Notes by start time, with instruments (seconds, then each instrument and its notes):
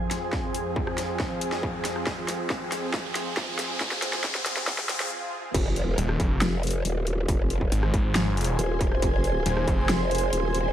Already playing: supersaw synth F2 F3 C4 G#4, ambient pad F4 G#4 C5 G#5, riser
0.11 snare, closed hi-hat
0.33 kick, snare
0.55 closed hi-hat
0.76 kick
0.87 cross-stick
0.98 snare, closed hi-hat
1.20 kick, snare
1.41 closed hi-hat
1.52 snare
1.63 kick
1.85 snare, closed hi-hat
1.96 cross-stick
2.07 kick, snare
2.28 snare, closed hi-hat
2.50 kick, snare
2.72 snare, closed hi-hat
2.94 kick, snare
3.15 snare, closed hi-hat
3.37 kick, snare
3.59 snare, closed hi-hat
3.81 kick, snare
3.92 snare
4.02 snare, closed hi-hat
4.13 snare
4.24 kick, snare
4.35 snare
4.46 snare, closed hi-hat
4.57 snare
4.67 kick, snare, swell
4.79 snare
4.89 snare, closed hi-hat
5.00 snare
5.54 wobble bass F1, ambient pad F4, kick, closed hi-hat, crash, impact
5.76 closed hi-hat
5.83 ambient pad G#4
5.98 detuned saw bass D#1, closed hi-hat
6.09 ambient pad C5, cross-stick
6.20 detuned saw bass F1, kick, closed hi-hat
6.41 wobble bass F1, ambient pad G#5, snare, closed hi-hat
6.63 closed hi-hat
6.67 closed hi-hat
6.71 closed hi-hat
6.85 wobble bass D#1, closed hi-hat
7.07 closed hi-hat
7.28 wobble bass F1, kick, closed hi-hat
7.50 closed hi-hat
7.61 kick
7.72 detuned saw bass G#1, closed hi-hat
7.83 cross-stick
7.94 kick, closed hi-hat
8.15 snare, closed hi-hat
8.37 closed hi-hat
8.41 closed hi-hat
8.44 closed hi-hat
8.59 wobble bass D#1, closed hi-hat
8.81 kick, closed hi-hat
8.92 cross-stick
9.02 wobble bass F1, kick, closed hi-hat
9.24 closed hi-hat
9.46 detuned saw bass D#1, closed hi-hat
9.57 cross-stick
9.68 detuned saw bass F1, kick, closed hi-hat
9.89 wobble bass F1, snare, closed hi-hat
10.11 closed hi-hat
10.15 closed hi-hat
10.18 closed hi-hat
10.33 wobble bass D#1, closed hi-hat
10.55 closed hi-hat